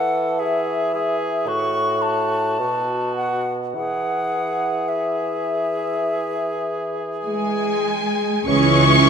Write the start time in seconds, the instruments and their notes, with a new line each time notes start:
Already playing: bassoon E3, cor anglais A4, flute F#5
0.39 cor anglais G#4, flute E5
0.94 cor anglais G#4
1.47 bassoon A2, cor anglais F#4, flute C#6
2.02 flute A5
2.59 bassoon B2, cor anglais F#4
3.16 flute F#5
3.74 bassoon E3, cor anglais G#4, flute F#5
4.88 flute E5
7.24 cello section G#3, flute G#4, violin section G#5
8.47 tuba C#2, double bass section C#2, trombone section C#3 G#3, bassoon E3, viola section E3 C#4, cello section C#4, french horn section C#4 E4, violin section E4 G#4 C#6, cor anglais G#4, flute C#5, trumpet section C#5
9.05 viola section F#3